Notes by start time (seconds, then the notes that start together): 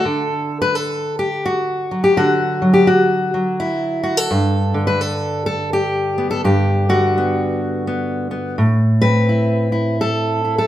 Already playing: A4
0.05 D3
0.62 B4
0.75 A4
1.19 G4
1.46 F#4
1.91 F#3
2.04 G4
2.17 D3 F#4
2.62 F#3
2.74 G4
2.87 F#4
3.34 F#3
3.60 E4
4.03 F#4
4.17 A4
4.31 G2
4.74 D3
4.87 B4
5.01 A4
5.46 A4
5.73 G4
6.18 B3
6.31 A4
6.44 G2 G4
6.89 D3 F#4
7.18 B3
7.87 B3
8.31 B3
8.58 A2
9.01 C4 B4
9.29 E4
9.72 E4
10.01 A4
10.45 E4
10.58 A4